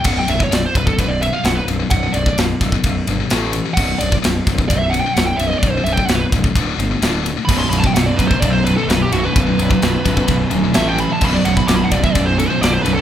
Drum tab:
CC |x---------------|----------------|x---------------|----------------|
RD |x-x-x-x-x-x-x-x-|x-x-x-x-x-x-x-x-|--x-x-x-x-x-x-x-|x-x-x-x-x-x-x-x-|
SD |----o-------o---|----o-o-----o---|----o-o-----o---|----o-------o---|
BD |o--o--ooo-------|o--o--ooo-------|o--o--ooo-------|o--o--ooo-------|

CC |x---------------|----------------|x---------------|
RD |--x-x-x-x-x-x-x-|x-x-x-x-x-x-x-x-|--x-x-x-x-x-x-x-|
SD |----o-------o---|----o-o-----o---|----o-------o---|
BD |o--o--ooo-------|o--o--ooo-------|o--o--ooo-------|